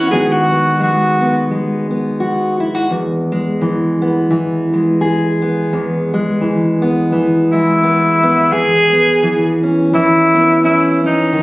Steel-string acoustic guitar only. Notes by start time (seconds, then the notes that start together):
0.11 D#3 G#3 B3 F#4
0.51 B3
0.80 G#3
1.21 B3
1.51 G#3
1.91 B3
2.20 F#4
2.60 E4
2.75 F#4
2.90 E2
3.32 G#3
3.61 E3
4.02 B3
4.31 E3
4.73 G#3
5.01 G#4
5.42 B3
5.73 E2
6.14 G#3
6.41 E3
6.82 B3
7.12 E3
7.53 G#3
7.83 B3
8.23 B3
8.52 E2
8.93 B3
9.23 E3
9.63 C#4
9.93 E3
10.34 B3
10.64 C#4
11.04 C#4
11.33 D#3